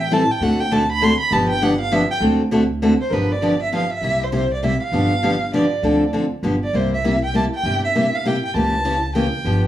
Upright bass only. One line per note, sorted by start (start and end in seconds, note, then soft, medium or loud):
0.00 0.23 A1 loud
0.41 1.13 D2 medium
1.31 2.03 G1 medium
2.20 2.93 D2 loud
3.11 3.84 G1 medium
4.01 4.74 C2 medium
4.92 5.65 G1 medium
5.83 6.31 D2 medium
6.43 6.67 G1 medium
6.73 7.46 C2 medium
7.63 8.36 G1 medium
8.54 9.27 C#2 medium
9.45 9.67 G1 medium